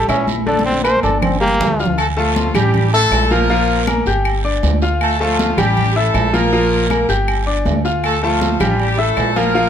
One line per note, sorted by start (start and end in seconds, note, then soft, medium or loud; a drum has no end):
0.08 0.97 A#1 loud
0.08 0.27 C#4 loud
0.08 0.40 E4 medium
0.08 0.40 E5 medium
0.08 0.40 E6 medium
0.08 high conga soft
0.08 low timbale medium
0.08 low agogo loud
0.08 short guiro medium
0.08 claves medium
0.27 high conga medium
0.27 low agogo medium
0.27 short guiro medium
0.46 0.77 D3 loud
0.46 0.78 D4 loud
0.46 0.65 A4 loud
0.46 0.78 D5 medium
0.46 high conga medium
0.46 long guiro medium
0.59 high conga medium
0.66 0.83 C4 loud
0.72 high conga medium
0.84 1.00 A#3 medium
0.84 1.00 A#4 medium
0.84 1.02 C5 loud
0.84 1.00 A#5 medium
0.84 low timbale medium
0.84 low agogo loud
0.84 short guiro medium
0.84 claves medium
0.97 high conga medium
1.03 1.56 G1 medium
1.03 1.34 D4 medium
1.03 1.21 A4 loud
1.03 1.34 D5 medium
1.03 1.35 D6 medium
1.03 low agogo medium
1.03 short guiro medium
1.09 high conga medium
1.22 1.40 C4 medium
1.22 low conga loud
1.22 low agogo loud
1.22 long guiro medium
1.22 claves medium
1.40 1.72 G3 medium
1.40 1.96 A#3 loud
1.40 1.72 G4 medium
1.40 1.72 G5 medium
1.48 low conga medium
1.60 2.49 D2 loud
1.60 low conga loud
1.60 low timbale medium
1.60 low agogo medium
1.60 short guiro medium
1.80 1.95 F4 medium
1.80 1.95 F5 medium
1.80 1.95 F6 medium
1.80 short guiro medium
1.85 low conga medium
1.98 2.07 A3 medium
1.98 2.07 A4 loud
1.98 high conga soft
1.98 low agogo loud
1.98 long guiro medium
1.98 claves medium
2.17 2.53 F3 medium
2.17 2.48 A3 medium
2.17 2.52 F4 medium
2.17 2.48 A4 medium
2.17 2.48 A5 medium
2.17 high conga soft
2.36 high conga loud
2.36 low timbale medium
2.36 low agogo medium
2.36 short guiro medium
2.54 3.07 A1 loud
2.54 2.86 G3 loud
2.54 2.93 G3 medium
2.54 2.93 G4 loud
2.54 2.86 G4 loud
2.54 2.86 G5 loud
2.54 high conga soft
2.54 low conga medium
2.54 low agogo loud
2.54 short guiro medium
2.54 claves medium
2.74 high conga soft
2.74 low conga medium
2.74 low agogo medium
2.74 long guiro medium
2.93 3.28 A3 medium
2.93 3.24 E4 medium
2.93 3.28 A4 loud
2.93 3.24 E5 medium
2.93 3.25 E6 medium
2.93 high conga soft
3.11 4.00 A#1 medium
3.11 high conga soft
3.11 low timbale medium
3.11 low agogo loud
3.11 short guiro medium
3.11 claves medium
3.30 3.46 F3 medium
3.30 3.88 A#3 medium
3.30 3.47 F4 medium
3.30 3.88 A#4 loud
3.30 3.47 F5 loud
3.30 high conga medium
3.30 low agogo medium
3.30 short guiro medium
3.50 3.81 F3 loud
3.50 3.81 F4 loud
3.50 3.81 F5 loud
3.50 high conga soft
3.50 long guiro medium
3.69 high conga soft
3.87 4.03 A#3 medium
3.87 4.03 A#4 medium
3.87 4.03 A#5 medium
3.87 high conga loud
3.87 low timbale medium
3.87 low agogo loud
3.87 short guiro medium
3.87 claves medium
4.06 4.59 G1 medium
4.06 4.38 G4 medium
4.06 4.38 G5 medium
4.06 4.38 G6 medium
4.06 high conga soft
4.06 low agogo medium
4.06 short guiro medium
4.25 high conga soft
4.25 low agogo loud
4.25 long guiro medium
4.25 claves medium
4.44 4.75 D4 medium
4.44 4.76 D5 medium
4.44 4.76 D6 medium
4.44 high conga soft
4.63 5.52 D2 medium
4.63 high conga medium
4.63 low timbale medium
4.63 low agogo medium
4.63 short guiro medium
4.82 5.13 F4 medium
4.82 5.13 F5 medium
4.82 5.14 F6 medium
4.82 high conga soft
4.82 short guiro medium
5.01 5.19 A3 medium
5.01 5.19 A4 loud
5.01 high conga soft
5.01 low agogo loud
5.01 long guiro medium
5.01 claves medium
5.20 5.59 F3 medium
5.20 5.51 A3 loud
5.20 5.58 F4 loud
5.20 5.51 A4 medium
5.20 5.52 A5 medium
5.20 high conga soft
5.39 high conga loud
5.39 low timbale medium
5.39 low agogo medium
5.39 short guiro medium
5.57 6.10 A1 medium
5.57 5.89 G3 loud
5.57 5.97 G3 medium
5.57 5.89 G4 loud
5.57 5.96 G4 loud
5.57 5.89 G5 loud
5.57 high conga soft
5.57 low conga medium
5.57 low agogo loud
5.57 short guiro medium
5.57 claves medium
5.77 high conga soft
5.77 low conga medium
5.77 low agogo medium
5.77 long guiro medium
5.96 6.34 A3 medium
5.96 6.27 E4 medium
5.96 6.34 A4 loud
5.96 6.27 E5 medium
5.96 6.27 E6 medium
5.96 high conga soft
6.14 7.03 A#1 loud
6.14 high conga soft
6.14 low timbale medium
6.14 low agogo loud
6.14 short guiro medium
6.14 claves medium
6.33 6.49 F3 medium
6.33 7.10 A#3 medium
6.33 6.49 F4 medium
6.33 7.10 A#4 loud
6.33 6.49 F5 medium
6.33 high conga medium
6.33 low agogo medium
6.33 short guiro medium
6.52 6.84 F3 loud
6.52 6.84 F4 loud
6.52 6.84 F5 loud
6.52 high conga soft
6.52 long guiro medium
6.90 7.05 A#3 medium
6.90 7.06 A#4 medium
6.90 7.06 A#5 medium
6.90 high conga medium
6.90 low timbale medium
6.90 low agogo loud
6.90 short guiro medium
6.90 claves medium
7.09 7.62 G1 medium
7.09 7.40 G4 medium
7.09 7.40 G5 medium
7.09 7.40 G6 medium
7.09 low agogo medium
7.09 short guiro medium
7.28 high conga soft
7.28 low agogo loud
7.28 long guiro medium
7.28 claves medium
7.46 7.78 D4 medium
7.46 7.78 D5 medium
7.46 7.78 D6 medium
7.46 high conga soft
7.65 8.55 D2 loud
7.65 high conga medium
7.65 low timbale medium
7.65 low agogo medium
7.65 short guiro medium
7.85 8.16 F4 medium
7.85 8.16 F5 medium
7.85 8.16 F6 medium
7.85 high conga soft
7.85 short guiro medium
8.04 8.22 A3 medium
8.04 8.22 A4 loud
8.04 high conga soft
8.04 low agogo loud
8.04 long guiro medium
8.04 claves medium
8.23 8.76 F3 medium
8.23 8.54 A3 medium
8.23 8.76 F4 medium
8.23 8.54 A4 medium
8.23 8.54 A5 medium
8.23 high conga soft
8.41 high conga loud
8.41 low timbale medium
8.41 low agogo medium
8.41 short guiro medium
8.60 9.13 A1 medium
8.60 8.92 G3 loud
8.60 8.92 G4 loud
8.60 8.92 G5 loud
8.60 high conga soft
8.60 low conga medium
8.60 low agogo loud
8.60 short guiro medium
8.60 claves medium
8.79 8.99 G3 medium
8.79 8.99 G4 loud
8.79 high conga soft
8.79 low agogo medium
8.79 long guiro medium
8.98 9.37 A3 medium
8.98 9.29 E4 medium
8.98 9.37 A4 loud
8.98 9.30 E5 medium
8.98 9.30 E6 medium
8.98 high conga soft
9.17 9.69 A#1 loud
9.17 high conga soft
9.17 low timbale medium
9.17 low agogo loud
9.17 short guiro medium
9.17 claves medium
9.36 9.52 F3 loud
9.36 9.69 A#3 medium
9.36 9.52 F4 medium
9.36 9.69 A#4 loud
9.36 9.52 F5 loud
9.36 high conga medium
9.36 low agogo medium
9.36 short guiro medium
9.55 9.69 F3 loud
9.55 9.69 F4 loud
9.55 9.69 F5 loud
9.55 high conga soft
9.55 long guiro medium